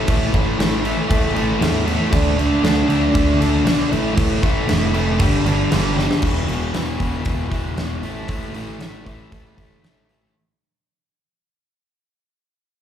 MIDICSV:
0, 0, Header, 1, 4, 480
1, 0, Start_track
1, 0, Tempo, 513259
1, 79, Time_signature, 4, 2, 24, 8
1, 11983, End_track
2, 0, Start_track
2, 0, Title_t, "Overdriven electric guitar"
2, 0, Program_c, 0, 29
2, 73, Note_on_c, 0, 45, 103
2, 79, Note_on_c, 0, 52, 123
2, 92, Note_on_c, 0, 57, 116
2, 296, Note_off_c, 0, 45, 0
2, 304, Note_off_c, 0, 52, 0
2, 307, Note_on_c, 0, 45, 90
2, 315, Note_on_c, 0, 52, 92
2, 317, Note_off_c, 0, 57, 0
2, 321, Note_on_c, 0, 57, 90
2, 523, Note_off_c, 0, 45, 0
2, 534, Note_on_c, 0, 45, 92
2, 537, Note_off_c, 0, 52, 0
2, 546, Note_off_c, 0, 57, 0
2, 548, Note_on_c, 0, 52, 108
2, 550, Note_on_c, 0, 57, 107
2, 758, Note_off_c, 0, 45, 0
2, 768, Note_off_c, 0, 52, 0
2, 770, Note_on_c, 0, 45, 111
2, 779, Note_on_c, 0, 52, 108
2, 784, Note_off_c, 0, 57, 0
2, 788, Note_on_c, 0, 57, 113
2, 1005, Note_off_c, 0, 45, 0
2, 1009, Note_off_c, 0, 52, 0
2, 1016, Note_on_c, 0, 45, 109
2, 1020, Note_on_c, 0, 52, 115
2, 1027, Note_off_c, 0, 57, 0
2, 1031, Note_on_c, 0, 57, 104
2, 1239, Note_off_c, 0, 45, 0
2, 1250, Note_on_c, 0, 45, 83
2, 1253, Note_off_c, 0, 52, 0
2, 1264, Note_off_c, 0, 57, 0
2, 1264, Note_on_c, 0, 52, 95
2, 1267, Note_on_c, 0, 57, 94
2, 1479, Note_off_c, 0, 45, 0
2, 1484, Note_off_c, 0, 52, 0
2, 1490, Note_on_c, 0, 45, 100
2, 1496, Note_on_c, 0, 52, 114
2, 1497, Note_off_c, 0, 57, 0
2, 1501, Note_on_c, 0, 57, 127
2, 1718, Note_off_c, 0, 45, 0
2, 1728, Note_off_c, 0, 52, 0
2, 1729, Note_on_c, 0, 45, 103
2, 1739, Note_off_c, 0, 57, 0
2, 1739, Note_on_c, 0, 52, 98
2, 1743, Note_on_c, 0, 57, 107
2, 1966, Note_off_c, 0, 45, 0
2, 1970, Note_on_c, 0, 50, 100
2, 1971, Note_off_c, 0, 52, 0
2, 1981, Note_off_c, 0, 57, 0
2, 1981, Note_on_c, 0, 57, 117
2, 1986, Note_on_c, 0, 62, 120
2, 2209, Note_off_c, 0, 50, 0
2, 2215, Note_off_c, 0, 57, 0
2, 2220, Note_on_c, 0, 50, 84
2, 2223, Note_off_c, 0, 62, 0
2, 2226, Note_on_c, 0, 57, 94
2, 2234, Note_on_c, 0, 62, 95
2, 2442, Note_off_c, 0, 50, 0
2, 2453, Note_off_c, 0, 57, 0
2, 2453, Note_on_c, 0, 50, 98
2, 2457, Note_off_c, 0, 62, 0
2, 2465, Note_on_c, 0, 57, 101
2, 2469, Note_on_c, 0, 62, 110
2, 2671, Note_off_c, 0, 50, 0
2, 2682, Note_on_c, 0, 50, 108
2, 2685, Note_off_c, 0, 57, 0
2, 2690, Note_off_c, 0, 62, 0
2, 2696, Note_on_c, 0, 57, 121
2, 2701, Note_on_c, 0, 62, 120
2, 2908, Note_off_c, 0, 50, 0
2, 2918, Note_off_c, 0, 57, 0
2, 2919, Note_on_c, 0, 50, 96
2, 2925, Note_off_c, 0, 62, 0
2, 2929, Note_on_c, 0, 57, 99
2, 2936, Note_on_c, 0, 62, 108
2, 3166, Note_off_c, 0, 50, 0
2, 3169, Note_off_c, 0, 57, 0
2, 3177, Note_off_c, 0, 62, 0
2, 3177, Note_on_c, 0, 50, 97
2, 3180, Note_on_c, 0, 57, 93
2, 3188, Note_on_c, 0, 62, 98
2, 3394, Note_off_c, 0, 50, 0
2, 3403, Note_off_c, 0, 57, 0
2, 3405, Note_off_c, 0, 62, 0
2, 3406, Note_on_c, 0, 50, 121
2, 3414, Note_on_c, 0, 57, 96
2, 3416, Note_on_c, 0, 62, 109
2, 3642, Note_off_c, 0, 50, 0
2, 3645, Note_on_c, 0, 45, 97
2, 3646, Note_off_c, 0, 57, 0
2, 3647, Note_off_c, 0, 62, 0
2, 3660, Note_on_c, 0, 52, 121
2, 3666, Note_on_c, 0, 57, 115
2, 3866, Note_off_c, 0, 45, 0
2, 3877, Note_on_c, 0, 45, 100
2, 3879, Note_off_c, 0, 57, 0
2, 3880, Note_off_c, 0, 52, 0
2, 3890, Note_on_c, 0, 57, 113
2, 3891, Note_on_c, 0, 52, 117
2, 4121, Note_off_c, 0, 45, 0
2, 4126, Note_off_c, 0, 52, 0
2, 4132, Note_off_c, 0, 57, 0
2, 4132, Note_on_c, 0, 45, 89
2, 4138, Note_on_c, 0, 52, 94
2, 4143, Note_on_c, 0, 57, 99
2, 4363, Note_off_c, 0, 45, 0
2, 4365, Note_off_c, 0, 52, 0
2, 4372, Note_off_c, 0, 57, 0
2, 4374, Note_on_c, 0, 45, 98
2, 4376, Note_on_c, 0, 52, 98
2, 4383, Note_on_c, 0, 57, 103
2, 4593, Note_off_c, 0, 45, 0
2, 4603, Note_off_c, 0, 52, 0
2, 4605, Note_on_c, 0, 45, 109
2, 4608, Note_off_c, 0, 57, 0
2, 4614, Note_on_c, 0, 52, 113
2, 4620, Note_on_c, 0, 57, 122
2, 4840, Note_off_c, 0, 45, 0
2, 4845, Note_off_c, 0, 52, 0
2, 4847, Note_off_c, 0, 57, 0
2, 4857, Note_on_c, 0, 43, 114
2, 4862, Note_on_c, 0, 50, 115
2, 4865, Note_on_c, 0, 55, 127
2, 5097, Note_off_c, 0, 50, 0
2, 5098, Note_off_c, 0, 43, 0
2, 5107, Note_off_c, 0, 55, 0
2, 5108, Note_on_c, 0, 50, 83
2, 5109, Note_on_c, 0, 43, 81
2, 5118, Note_on_c, 0, 55, 90
2, 5328, Note_off_c, 0, 43, 0
2, 5334, Note_off_c, 0, 50, 0
2, 5340, Note_on_c, 0, 43, 95
2, 5345, Note_on_c, 0, 50, 104
2, 5346, Note_off_c, 0, 55, 0
2, 5357, Note_on_c, 0, 55, 102
2, 5570, Note_off_c, 0, 43, 0
2, 5571, Note_off_c, 0, 50, 0
2, 5581, Note_on_c, 0, 43, 95
2, 5582, Note_off_c, 0, 55, 0
2, 5582, Note_on_c, 0, 50, 93
2, 5593, Note_on_c, 0, 55, 102
2, 5808, Note_off_c, 0, 43, 0
2, 5808, Note_off_c, 0, 50, 0
2, 5811, Note_on_c, 0, 40, 102
2, 5814, Note_off_c, 0, 55, 0
2, 5817, Note_on_c, 0, 47, 85
2, 5825, Note_on_c, 0, 52, 94
2, 6034, Note_off_c, 0, 40, 0
2, 6045, Note_on_c, 0, 40, 73
2, 6046, Note_off_c, 0, 47, 0
2, 6057, Note_on_c, 0, 47, 77
2, 6063, Note_off_c, 0, 52, 0
2, 6067, Note_on_c, 0, 52, 78
2, 6279, Note_off_c, 0, 40, 0
2, 6289, Note_off_c, 0, 47, 0
2, 6290, Note_on_c, 0, 40, 87
2, 6300, Note_on_c, 0, 47, 101
2, 6301, Note_off_c, 0, 52, 0
2, 6305, Note_on_c, 0, 52, 110
2, 6531, Note_off_c, 0, 40, 0
2, 6536, Note_off_c, 0, 47, 0
2, 6542, Note_on_c, 0, 40, 79
2, 6547, Note_on_c, 0, 47, 84
2, 6549, Note_off_c, 0, 52, 0
2, 6552, Note_on_c, 0, 52, 85
2, 6761, Note_off_c, 0, 40, 0
2, 6769, Note_off_c, 0, 47, 0
2, 6772, Note_on_c, 0, 40, 99
2, 6780, Note_on_c, 0, 47, 102
2, 6781, Note_off_c, 0, 52, 0
2, 6784, Note_on_c, 0, 52, 107
2, 6997, Note_off_c, 0, 40, 0
2, 7003, Note_off_c, 0, 47, 0
2, 7008, Note_on_c, 0, 40, 77
2, 7014, Note_on_c, 0, 47, 77
2, 7016, Note_off_c, 0, 52, 0
2, 7019, Note_on_c, 0, 52, 91
2, 7240, Note_off_c, 0, 40, 0
2, 7247, Note_off_c, 0, 47, 0
2, 7251, Note_on_c, 0, 40, 83
2, 7258, Note_on_c, 0, 47, 87
2, 7262, Note_off_c, 0, 52, 0
2, 7266, Note_on_c, 0, 52, 94
2, 7484, Note_off_c, 0, 40, 0
2, 7487, Note_off_c, 0, 47, 0
2, 7507, Note_on_c, 0, 45, 100
2, 7508, Note_off_c, 0, 52, 0
2, 7512, Note_on_c, 0, 52, 105
2, 7522, Note_on_c, 0, 57, 105
2, 7735, Note_off_c, 0, 45, 0
2, 7738, Note_off_c, 0, 52, 0
2, 7742, Note_off_c, 0, 57, 0
2, 7746, Note_on_c, 0, 45, 86
2, 7749, Note_on_c, 0, 52, 98
2, 7753, Note_on_c, 0, 57, 89
2, 7972, Note_off_c, 0, 45, 0
2, 7983, Note_on_c, 0, 45, 71
2, 7986, Note_off_c, 0, 52, 0
2, 7986, Note_off_c, 0, 57, 0
2, 7997, Note_on_c, 0, 52, 80
2, 7997, Note_on_c, 0, 57, 87
2, 8215, Note_off_c, 0, 45, 0
2, 8216, Note_off_c, 0, 52, 0
2, 8224, Note_off_c, 0, 57, 0
2, 8226, Note_on_c, 0, 45, 95
2, 8227, Note_on_c, 0, 52, 99
2, 8236, Note_on_c, 0, 57, 98
2, 8451, Note_off_c, 0, 45, 0
2, 8459, Note_off_c, 0, 52, 0
2, 8463, Note_on_c, 0, 45, 82
2, 8468, Note_off_c, 0, 57, 0
2, 8470, Note_on_c, 0, 52, 88
2, 8480, Note_on_c, 0, 57, 93
2, 8696, Note_off_c, 0, 45, 0
2, 8705, Note_off_c, 0, 52, 0
2, 8706, Note_off_c, 0, 57, 0
2, 8707, Note_on_c, 0, 45, 90
2, 8717, Note_on_c, 0, 52, 95
2, 8717, Note_on_c, 0, 57, 94
2, 8932, Note_off_c, 0, 45, 0
2, 8942, Note_off_c, 0, 52, 0
2, 8943, Note_on_c, 0, 45, 72
2, 8946, Note_off_c, 0, 57, 0
2, 8953, Note_on_c, 0, 52, 70
2, 8957, Note_on_c, 0, 57, 78
2, 9175, Note_off_c, 0, 45, 0
2, 9184, Note_off_c, 0, 52, 0
2, 9186, Note_on_c, 0, 45, 78
2, 9190, Note_off_c, 0, 57, 0
2, 9195, Note_on_c, 0, 52, 83
2, 9201, Note_on_c, 0, 57, 102
2, 9425, Note_off_c, 0, 45, 0
2, 9434, Note_off_c, 0, 52, 0
2, 9436, Note_on_c, 0, 45, 73
2, 9438, Note_off_c, 0, 57, 0
2, 9446, Note_on_c, 0, 52, 76
2, 9449, Note_on_c, 0, 57, 82
2, 9660, Note_off_c, 0, 45, 0
2, 9664, Note_off_c, 0, 52, 0
2, 9666, Note_off_c, 0, 57, 0
2, 11983, End_track
3, 0, Start_track
3, 0, Title_t, "Picked electric bass"
3, 0, Program_c, 1, 34
3, 71, Note_on_c, 1, 33, 105
3, 238, Note_off_c, 1, 33, 0
3, 318, Note_on_c, 1, 33, 99
3, 483, Note_off_c, 1, 33, 0
3, 555, Note_on_c, 1, 33, 89
3, 885, Note_off_c, 1, 33, 0
3, 1031, Note_on_c, 1, 33, 99
3, 1198, Note_off_c, 1, 33, 0
3, 1265, Note_on_c, 1, 33, 97
3, 1433, Note_off_c, 1, 33, 0
3, 1508, Note_on_c, 1, 40, 96
3, 1839, Note_off_c, 1, 40, 0
3, 1986, Note_on_c, 1, 38, 93
3, 2318, Note_off_c, 1, 38, 0
3, 2458, Note_on_c, 1, 38, 99
3, 2627, Note_off_c, 1, 38, 0
3, 2694, Note_on_c, 1, 38, 87
3, 2865, Note_off_c, 1, 38, 0
3, 2947, Note_on_c, 1, 38, 97
3, 3112, Note_off_c, 1, 38, 0
3, 3177, Note_on_c, 1, 38, 112
3, 3346, Note_off_c, 1, 38, 0
3, 3414, Note_on_c, 1, 35, 100
3, 3583, Note_off_c, 1, 35, 0
3, 3667, Note_on_c, 1, 33, 109
3, 3832, Note_off_c, 1, 33, 0
3, 3907, Note_on_c, 1, 33, 94
3, 4072, Note_off_c, 1, 33, 0
3, 4144, Note_on_c, 1, 33, 92
3, 4310, Note_off_c, 1, 33, 0
3, 4387, Note_on_c, 1, 29, 89
3, 4863, Note_off_c, 1, 29, 0
3, 4863, Note_on_c, 1, 31, 92
3, 5029, Note_off_c, 1, 31, 0
3, 5097, Note_on_c, 1, 31, 95
3, 5265, Note_off_c, 1, 31, 0
3, 5354, Note_on_c, 1, 31, 105
3, 5681, Note_off_c, 1, 31, 0
3, 5825, Note_on_c, 1, 28, 83
3, 6027, Note_off_c, 1, 28, 0
3, 6072, Note_on_c, 1, 28, 82
3, 6271, Note_off_c, 1, 28, 0
3, 6307, Note_on_c, 1, 28, 77
3, 6508, Note_off_c, 1, 28, 0
3, 6546, Note_on_c, 1, 28, 80
3, 6747, Note_off_c, 1, 28, 0
3, 6787, Note_on_c, 1, 28, 80
3, 6988, Note_off_c, 1, 28, 0
3, 7028, Note_on_c, 1, 28, 79
3, 7229, Note_off_c, 1, 28, 0
3, 7267, Note_on_c, 1, 28, 85
3, 7469, Note_off_c, 1, 28, 0
3, 7514, Note_on_c, 1, 33, 84
3, 7713, Note_off_c, 1, 33, 0
3, 7751, Note_on_c, 1, 33, 90
3, 7952, Note_off_c, 1, 33, 0
3, 7991, Note_on_c, 1, 33, 80
3, 8192, Note_off_c, 1, 33, 0
3, 8241, Note_on_c, 1, 33, 78
3, 8438, Note_off_c, 1, 33, 0
3, 8475, Note_on_c, 1, 33, 76
3, 8675, Note_off_c, 1, 33, 0
3, 8714, Note_on_c, 1, 33, 80
3, 8915, Note_off_c, 1, 33, 0
3, 8961, Note_on_c, 1, 33, 77
3, 9159, Note_off_c, 1, 33, 0
3, 9201, Note_on_c, 1, 33, 79
3, 9602, Note_off_c, 1, 33, 0
3, 11983, End_track
4, 0, Start_track
4, 0, Title_t, "Drums"
4, 71, Note_on_c, 9, 49, 104
4, 77, Note_on_c, 9, 36, 121
4, 165, Note_off_c, 9, 49, 0
4, 170, Note_off_c, 9, 36, 0
4, 316, Note_on_c, 9, 49, 69
4, 318, Note_on_c, 9, 36, 86
4, 409, Note_off_c, 9, 49, 0
4, 412, Note_off_c, 9, 36, 0
4, 560, Note_on_c, 9, 49, 83
4, 565, Note_on_c, 9, 38, 107
4, 654, Note_off_c, 9, 49, 0
4, 659, Note_off_c, 9, 38, 0
4, 793, Note_on_c, 9, 49, 68
4, 887, Note_off_c, 9, 49, 0
4, 1035, Note_on_c, 9, 36, 123
4, 1038, Note_on_c, 9, 49, 94
4, 1128, Note_off_c, 9, 36, 0
4, 1131, Note_off_c, 9, 49, 0
4, 1273, Note_on_c, 9, 49, 72
4, 1366, Note_off_c, 9, 49, 0
4, 1515, Note_on_c, 9, 49, 99
4, 1519, Note_on_c, 9, 38, 112
4, 1608, Note_off_c, 9, 49, 0
4, 1613, Note_off_c, 9, 38, 0
4, 1754, Note_on_c, 9, 49, 70
4, 1847, Note_off_c, 9, 49, 0
4, 1989, Note_on_c, 9, 36, 118
4, 1989, Note_on_c, 9, 49, 102
4, 2083, Note_off_c, 9, 36, 0
4, 2083, Note_off_c, 9, 49, 0
4, 2235, Note_on_c, 9, 49, 70
4, 2329, Note_off_c, 9, 49, 0
4, 2471, Note_on_c, 9, 49, 84
4, 2476, Note_on_c, 9, 38, 118
4, 2565, Note_off_c, 9, 49, 0
4, 2569, Note_off_c, 9, 38, 0
4, 2710, Note_on_c, 9, 49, 68
4, 2804, Note_off_c, 9, 49, 0
4, 2946, Note_on_c, 9, 49, 98
4, 2947, Note_on_c, 9, 36, 127
4, 3040, Note_off_c, 9, 36, 0
4, 3040, Note_off_c, 9, 49, 0
4, 3195, Note_on_c, 9, 49, 80
4, 3288, Note_off_c, 9, 49, 0
4, 3428, Note_on_c, 9, 49, 94
4, 3433, Note_on_c, 9, 38, 127
4, 3522, Note_off_c, 9, 49, 0
4, 3526, Note_off_c, 9, 38, 0
4, 3671, Note_on_c, 9, 49, 65
4, 3764, Note_off_c, 9, 49, 0
4, 3905, Note_on_c, 9, 36, 127
4, 3905, Note_on_c, 9, 49, 104
4, 3999, Note_off_c, 9, 36, 0
4, 3999, Note_off_c, 9, 49, 0
4, 4144, Note_on_c, 9, 36, 91
4, 4144, Note_on_c, 9, 49, 70
4, 4238, Note_off_c, 9, 36, 0
4, 4238, Note_off_c, 9, 49, 0
4, 4383, Note_on_c, 9, 49, 96
4, 4388, Note_on_c, 9, 38, 119
4, 4477, Note_off_c, 9, 49, 0
4, 4481, Note_off_c, 9, 38, 0
4, 4622, Note_on_c, 9, 49, 71
4, 4716, Note_off_c, 9, 49, 0
4, 4857, Note_on_c, 9, 49, 104
4, 4862, Note_on_c, 9, 36, 127
4, 4951, Note_off_c, 9, 49, 0
4, 4956, Note_off_c, 9, 36, 0
4, 5107, Note_on_c, 9, 49, 71
4, 5201, Note_off_c, 9, 49, 0
4, 5344, Note_on_c, 9, 49, 97
4, 5349, Note_on_c, 9, 38, 115
4, 5438, Note_off_c, 9, 49, 0
4, 5442, Note_off_c, 9, 38, 0
4, 5599, Note_on_c, 9, 38, 68
4, 5693, Note_off_c, 9, 38, 0
4, 5712, Note_on_c, 9, 38, 101
4, 5806, Note_off_c, 9, 38, 0
4, 5815, Note_on_c, 9, 57, 108
4, 5825, Note_on_c, 9, 36, 107
4, 5909, Note_off_c, 9, 57, 0
4, 5918, Note_off_c, 9, 36, 0
4, 6064, Note_on_c, 9, 46, 47
4, 6158, Note_off_c, 9, 46, 0
4, 6305, Note_on_c, 9, 46, 58
4, 6310, Note_on_c, 9, 38, 110
4, 6398, Note_off_c, 9, 46, 0
4, 6403, Note_off_c, 9, 38, 0
4, 6546, Note_on_c, 9, 46, 51
4, 6548, Note_on_c, 9, 36, 74
4, 6640, Note_off_c, 9, 46, 0
4, 6641, Note_off_c, 9, 36, 0
4, 6780, Note_on_c, 9, 46, 75
4, 6787, Note_on_c, 9, 36, 117
4, 6874, Note_off_c, 9, 46, 0
4, 6881, Note_off_c, 9, 36, 0
4, 7029, Note_on_c, 9, 36, 76
4, 7029, Note_on_c, 9, 46, 56
4, 7033, Note_on_c, 9, 38, 32
4, 7122, Note_off_c, 9, 36, 0
4, 7122, Note_off_c, 9, 46, 0
4, 7127, Note_off_c, 9, 38, 0
4, 7271, Note_on_c, 9, 46, 74
4, 7276, Note_on_c, 9, 38, 107
4, 7365, Note_off_c, 9, 46, 0
4, 7370, Note_off_c, 9, 38, 0
4, 7511, Note_on_c, 9, 46, 48
4, 7605, Note_off_c, 9, 46, 0
4, 7747, Note_on_c, 9, 46, 79
4, 7752, Note_on_c, 9, 36, 103
4, 7840, Note_off_c, 9, 46, 0
4, 7846, Note_off_c, 9, 36, 0
4, 7991, Note_on_c, 9, 46, 49
4, 8084, Note_off_c, 9, 46, 0
4, 8235, Note_on_c, 9, 46, 73
4, 8239, Note_on_c, 9, 38, 94
4, 8328, Note_off_c, 9, 46, 0
4, 8333, Note_off_c, 9, 38, 0
4, 8477, Note_on_c, 9, 36, 70
4, 8480, Note_on_c, 9, 46, 46
4, 8571, Note_off_c, 9, 36, 0
4, 8574, Note_off_c, 9, 46, 0
4, 8718, Note_on_c, 9, 36, 110
4, 8722, Note_on_c, 9, 46, 69
4, 8812, Note_off_c, 9, 36, 0
4, 8816, Note_off_c, 9, 46, 0
4, 8960, Note_on_c, 9, 36, 69
4, 8961, Note_on_c, 9, 46, 49
4, 9053, Note_off_c, 9, 36, 0
4, 9055, Note_off_c, 9, 46, 0
4, 9203, Note_on_c, 9, 46, 61
4, 9208, Note_on_c, 9, 38, 96
4, 9297, Note_off_c, 9, 46, 0
4, 9301, Note_off_c, 9, 38, 0
4, 9438, Note_on_c, 9, 46, 47
4, 9531, Note_off_c, 9, 46, 0
4, 11983, End_track
0, 0, End_of_file